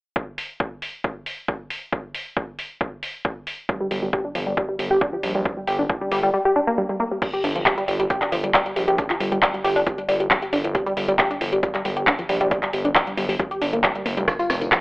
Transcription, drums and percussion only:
0.16 kick
0.38 open hi-hat
0.60 kick
0.82 open hi-hat
1.04 kick
1.26 open hi-hat
1.48 kick
1.70 open hi-hat
1.92 kick
2.15 open hi-hat
2.37 kick
2.59 open hi-hat
2.81 kick
3.03 open hi-hat
3.25 kick
3.47 open hi-hat
3.69 kick
3.91 open hi-hat
4.13 kick
4.35 open hi-hat
4.57 kick
4.79 open hi-hat
5.01 kick
5.23 open hi-hat
5.45 kick
5.67 open hi-hat
5.90 kick
6.12 open hi-hat
7.22 kick, closed hi-hat, crash
7.34 closed hi-hat
7.44 open hi-hat
7.56 closed hi-hat
7.66 kick, clap, closed hi-hat
7.78 closed hi-hat
7.88 open hi-hat
8.00 closed hi-hat
8.10 kick, closed hi-hat
8.22 clap, closed hi-hat
8.32 open hi-hat
8.44 closed hi-hat
8.54 kick, clap, closed hi-hat
8.66 closed hi-hat
8.76 open hi-hat
8.88 closed hi-hat
8.98 kick, closed hi-hat
9.10 clap, closed hi-hat
9.20 open hi-hat
9.32 closed hi-hat
9.42 kick, clap, closed hi-hat
9.54 closed hi-hat
9.65 open hi-hat
9.76 open hi-hat
9.87 kick, closed hi-hat
9.98 closed hi-hat
10.09 open hi-hat
10.20 closed hi-hat
10.31 kick, clap, closed hi-hat
10.42 closed hi-hat
10.53 open hi-hat
10.64 closed hi-hat
10.75 kick, closed hi-hat
10.86 closed hi-hat
10.97 open hi-hat
11.08 closed hi-hat
11.19 kick, clap, closed hi-hat
11.31 closed hi-hat
11.41 open hi-hat
11.53 closed hi-hat
11.63 kick, closed hi-hat
11.75 clap, closed hi-hat
11.85 open hi-hat
11.97 closed hi-hat
12.07 kick, clap, closed hi-hat
12.19 closed hi-hat
12.29 open hi-hat
12.41 closed hi-hat
12.51 kick, closed hi-hat
12.63 clap, closed hi-hat
12.73 open hi-hat
12.85 closed hi-hat
12.95 kick, clap, closed hi-hat
13.07 closed hi-hat
13.17 open hi-hat
13.29 open hi-hat
13.39 kick, closed hi-hat
13.51 closed hi-hat
13.62 open hi-hat
13.73 closed hi-hat
13.84 kick, clap, closed hi-hat
13.95 closed hi-hat
14.06 open hi-hat
14.17 closed hi-hat
14.28 kick, cross-stick, closed hi-hat, tambourine
14.39 closed hi-hat, tambourine
14.50 cross-stick, open hi-hat, tambourine
14.61 closed hi-hat, tambourine
14.72 kick, cross-stick, clap, closed hi-hat, tambourine

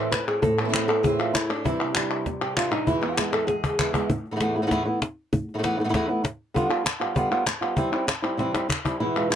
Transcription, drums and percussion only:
0.13 cajon slap, clap
0.28 clap
0.43 cajon bass
0.74 cajon slap, clap
0.89 clap
1.04 cajon bass
1.35 cajon slap, clap
1.50 clap
1.66 cajon bass
1.95 cajon slap, clap
2.11 clap
2.26 cajon bass, cajon slap
2.57 cajon slap, clap
2.72 clap
2.87 cajon bass
3.18 cajon slap, clap
3.33 clap
3.48 cajon slap
3.64 cajon bass
3.79 cajon bass, clap
3.94 cajon bass, clap
4.09 cajon bass
4.26 cajon slap
4.40 cajon slap
4.71 cajon bass, cajon slap
5.02 cajon slap
5.33 cajon bass
5.49 cajon slap
5.64 cajon slap
5.94 cajon bass, cajon slap
6.10 cajon slap
6.25 cajon slap
6.56 cajon bass
6.86 cajon slap, clap
7.01 clap
7.16 cajon bass
7.46 cajon slap, clap
7.62 clap
7.77 cajon bass
7.92 cajon slap
8.08 cajon slap, clap
8.24 clap
8.39 cajon slap
8.55 cajon slap
8.70 cajon bass, clap
8.85 cajon bass, clap
9.32 clap

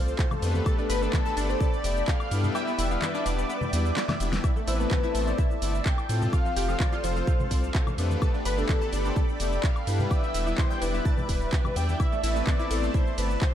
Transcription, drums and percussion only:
0.08 cabasa
0.19 kick, clap, cabasa
0.31 high conga, low conga, cabasa, high woodblock
0.42 open hi-hat, cabasa, high woodblock
0.55 high conga, cabasa
0.66 kick, cabasa, high woodblock
0.79 cabasa
0.90 open hi-hat, cabasa
1.02 cabasa
1.13 kick, clap, high conga, cabasa
1.26 cabasa
1.37 open hi-hat, cabasa
1.50 cabasa
1.61 kick, cabasa
1.73 cabasa
1.84 open hi-hat, cabasa
1.97 cabasa
2.08 kick, clap, cabasa
2.20 cabasa, high woodblock
2.31 open hi-hat, cabasa
2.44 low conga, cabasa, high woodblock
2.55 cabasa, high woodblock
2.68 cabasa
2.79 open hi-hat, cabasa
2.91 cabasa, high woodblock
3.02 clap, high conga, cabasa
3.15 cabasa, high woodblock
3.26 open hi-hat, cabasa
3.38 cabasa
3.50 cabasa
3.61 high conga, low conga, cabasa
3.73 open hi-hat, cabasa
3.86 cabasa
3.97 snare, clap, cabasa
4.08 snare, high conga, low conga, cabasa, high woodblock
4.20 open hi-hat, cabasa, high woodblock
4.32 snare, high conga, cabasa
4.44 kick, cabasa, high woodblock
4.56 cabasa
4.68 open hi-hat, cabasa
4.80 cabasa
4.91 kick, clap, high conga, cabasa
5.04 cabasa
5.15 open hi-hat, cabasa
5.27 cabasa
5.38 kick, cabasa
5.51 cabasa
5.62 open hi-hat, cabasa
5.75 cabasa
5.86 kick, clap, cabasa
5.98 cabasa, high woodblock
6.09 open hi-hat, cabasa
6.22 low conga, cabasa, high woodblock
6.33 kick, cabasa, high woodblock
6.46 cabasa
6.57 open hi-hat, cabasa
6.68 cabasa, high woodblock
6.80 kick, clap, high conga, cabasa
6.93 cabasa, high woodblock
7.04 open hi-hat, cabasa
7.16 cabasa
7.27 kick, cabasa
7.39 high conga, low conga, cabasa
7.51 kick, open hi-hat, cabasa
7.64 cabasa
7.75 kick, clap, cabasa
7.87 high conga, low conga, cabasa, high woodblock
7.98 open hi-hat, cabasa, high woodblock
8.11 high conga, cabasa
8.22 kick, cabasa, high woodblock
8.34 cabasa
8.45 open hi-hat, cabasa
8.58 cabasa
8.69 kick, clap, high conga, cabasa
8.82 cabasa
8.93 open hi-hat, cabasa
9.05 cabasa
9.16 kick, cabasa
9.29 cabasa
9.40 open hi-hat, cabasa
9.52 cabasa
9.63 kick, clap, cabasa
9.76 cabasa, high woodblock
9.87 open hi-hat, cabasa
10.00 low conga, cabasa, high woodblock
10.11 kick, cabasa, high woodblock
10.23 cabasa
10.34 open hi-hat, cabasa
10.46 cabasa, high woodblock
10.58 kick, clap, high conga, cabasa
10.70 cabasa, high woodblock
10.82 open hi-hat, cabasa
10.94 cabasa
11.05 kick, cabasa
11.18 high conga, low conga, cabasa
11.29 kick, open hi-hat, cabasa
11.42 cabasa
11.52 kick, clap, cabasa
11.64 high conga, low conga, cabasa, high woodblock
11.76 open hi-hat, cabasa, high woodblock
11.89 high conga, cabasa
12.00 kick, cabasa, high woodblock
12.12 cabasa
12.24 open hi-hat, ride, cabasa
12.36 cabasa
12.47 kick, clap, high conga, cabasa
12.60 cabasa
12.71 open hi-hat, ride, cabasa
12.83 cabasa
12.94 kick, cabasa
13.07 cabasa
13.18 open hi-hat, ride, cabasa
13.30 cabasa
13.41 kick, clap, cabasa

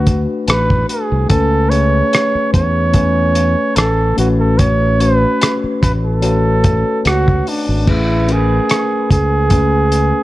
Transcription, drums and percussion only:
0.07 kick, closed hi-hat
0.48 cross-stick, closed hi-hat
0.70 kick
0.89 closed hi-hat
1.30 kick, closed hi-hat
1.72 closed hi-hat
2.13 cross-stick, closed hi-hat
2.54 kick, closed hi-hat
2.94 kick, closed hi-hat
3.35 closed hi-hat
3.76 cross-stick, closed hi-hat
4.18 closed hi-hat
4.59 kick, closed hi-hat
5.00 closed hi-hat
5.41 cross-stick, closed hi-hat
5.83 kick, closed hi-hat
6.22 closed hi-hat
6.64 kick, closed hi-hat
7.05 cross-stick, closed hi-hat
7.28 kick
7.47 open hi-hat
7.87 kick, crash
8.29 closed hi-hat
8.69 cross-stick, closed hi-hat
9.11 kick, closed hi-hat
9.50 kick, closed hi-hat
9.92 closed hi-hat

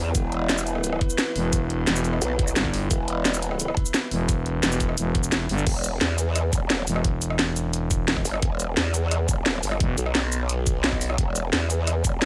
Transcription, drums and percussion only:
0.15 kick, closed hi-hat, shaker
0.32 closed hi-hat
0.49 snare, closed hi-hat, shaker
0.58 shaker
0.67 closed hi-hat, shaker
0.75 cross-stick
0.84 closed hi-hat, shaker
0.92 cross-stick
1.01 kick, closed hi-hat
1.10 shaker
1.18 snare, closed hi-hat, shaker
1.36 open hi-hat
1.53 kick, closed hi-hat, shaker
1.70 closed hi-hat
1.87 snare, closed hi-hat, shaker
1.96 shaker
2.05 closed hi-hat, shaker
2.13 cross-stick
2.22 closed hi-hat, shaker
2.39 kick, closed hi-hat
2.48 shaker
2.56 snare, closed hi-hat, shaker
2.65 kick
2.73 open hi-hat
2.91 kick, closed hi-hat, shaker
3.08 closed hi-hat
3.25 snare, closed hi-hat, shaker
3.34 shaker
3.42 closed hi-hat, shaker
3.51 cross-stick
3.60 closed hi-hat, shaker
3.68 cross-stick
3.77 kick, closed hi-hat
3.86 shaker
3.94 snare, closed hi-hat, shaker
4.11 open hi-hat
4.29 kick, closed hi-hat, shaker
4.46 closed hi-hat
4.63 snare, closed hi-hat, shaker
4.72 shaker
4.80 kick, closed hi-hat, shaker
4.89 cross-stick
4.98 closed hi-hat, shaker
5.15 kick, closed hi-hat
5.23 shaker
5.32 snare, closed hi-hat, shaker
5.49 open hi-hat
5.58 shaker
5.67 kick, closed hi-hat, crash
5.84 closed hi-hat, shaker
6.01 snare, closed hi-hat
6.18 closed hi-hat, shaker
6.36 cross-stick, closed hi-hat, shaker
6.53 kick, closed hi-hat, shaker
6.70 snare, closed hi-hat
6.87 open hi-hat, shaker
6.96 cross-stick
7.04 kick, closed hi-hat
7.22 closed hi-hat, shaker
7.30 cross-stick
7.39 snare, closed hi-hat
7.56 closed hi-hat, shaker
7.73 closed hi-hat, shaker
7.91 kick, closed hi-hat, shaker
8.08 snare, closed hi-hat
8.17 kick, cross-stick
8.25 open hi-hat, shaker
8.34 cross-stick
8.42 kick, closed hi-hat
8.60 closed hi-hat, shaker
8.77 snare, closed hi-hat
8.94 closed hi-hat, shaker
9.11 cross-stick, closed hi-hat, shaker
9.29 kick, closed hi-hat, shaker
9.46 snare, closed hi-hat
9.63 open hi-hat, shaker
9.72 cross-stick
9.80 kick, closed hi-hat
9.98 closed hi-hat, shaker
10.06 cross-stick
10.15 snare, closed hi-hat
10.32 closed hi-hat, shaker
10.49 closed hi-hat, shaker
10.67 kick, closed hi-hat, shaker
10.84 snare, closed hi-hat
10.92 kick, cross-stick
11.01 open hi-hat, shaker
11.10 cross-stick
11.18 kick, closed hi-hat
11.36 closed hi-hat, shaker
11.53 snare, closed hi-hat
11.70 closed hi-hat, shaker
11.87 cross-stick, closed hi-hat, shaker
12.04 kick, closed hi-hat, shaker
12.22 snare, closed hi-hat

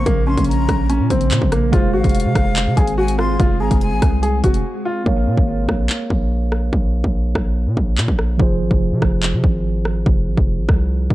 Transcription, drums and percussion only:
0.06 kick, closed hi-hat
0.38 kick, closed hi-hat
0.44 closed hi-hat
0.51 closed hi-hat
0.69 kick, cross-stick, closed hi-hat
0.90 closed hi-hat
1.10 kick, closed hi-hat
1.21 closed hi-hat
1.31 clap, closed hi-hat
1.42 kick
1.52 cross-stick, closed hi-hat
1.73 kick, closed hi-hat
2.04 kick, closed hi-hat
2.09 closed hi-hat
2.15 closed hi-hat
2.20 closed hi-hat
2.35 kick, cross-stick, closed hi-hat
2.56 clap, closed hi-hat
2.77 kick, closed hi-hat
2.87 closed hi-hat
3.08 closed hi-hat
3.19 cross-stick
3.40 kick, closed hi-hat
3.71 kick, closed hi-hat
3.81 closed hi-hat
4.02 kick, cross-stick, closed hi-hat
4.23 closed hi-hat
4.44 kick, closed hi-hat
4.54 closed hi-hat
5.06 kick
5.37 kick
5.69 kick, cross-stick
5.90 clap
6.10 kick
6.52 cross-stick
6.73 kick
7.04 kick
7.35 kick, cross-stick
7.77 kick
7.98 clap
8.08 kick
8.19 cross-stick
8.40 kick
8.71 kick
9.02 kick, cross-stick
9.23 clap
9.44 kick
9.85 cross-stick
10.06 kick
10.37 kick
10.69 kick, cross-stick
11.10 kick

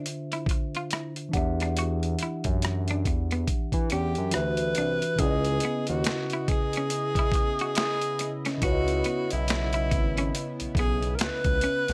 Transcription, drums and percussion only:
0.06 closed hi-hat
0.32 closed hi-hat
0.46 kick, closed hi-hat
0.75 closed hi-hat
0.91 cross-stick, closed hi-hat
1.16 closed hi-hat
1.33 kick, closed hi-hat
1.60 cross-stick, closed hi-hat
1.77 closed hi-hat
2.03 closed hi-hat
2.19 closed hi-hat
2.44 kick, closed hi-hat
2.62 cross-stick, closed hi-hat
2.88 closed hi-hat
3.05 kick, closed hi-hat
3.31 closed hi-hat
3.47 kick, closed hi-hat
3.72 kick, closed hi-hat
3.90 closed hi-hat
4.15 closed hi-hat
4.31 cross-stick, closed hi-hat
4.57 closed hi-hat
4.75 closed hi-hat
5.02 closed hi-hat
5.19 kick, closed hi-hat
5.45 closed hi-hat
5.60 closed hi-hat
5.87 closed hi-hat
6.04 finger snap, snare, closed hi-hat
6.30 closed hi-hat
6.48 kick, closed hi-hat
6.73 closed hi-hat
6.90 closed hi-hat
7.15 kick, closed hi-hat
7.32 kick, closed hi-hat
7.59 closed hi-hat
7.75 finger snap, snare, closed hi-hat
8.01 closed hi-hat
8.19 closed hi-hat
8.45 snare, closed hi-hat
8.62 kick, closed hi-hat
8.88 closed hi-hat
9.04 closed hi-hat
9.31 closed hi-hat
9.48 finger snap, snare, closed hi-hat
9.73 closed hi-hat
9.91 kick, closed hi-hat
10.18 closed hi-hat
10.35 closed hi-hat
10.60 closed hi-hat
10.75 kick, closed hi-hat
11.03 closed hi-hat
11.19 finger snap, snare, closed hi-hat
11.44 kick, closed hi-hat
11.61 closed hi-hat
11.88 snare, closed hi-hat

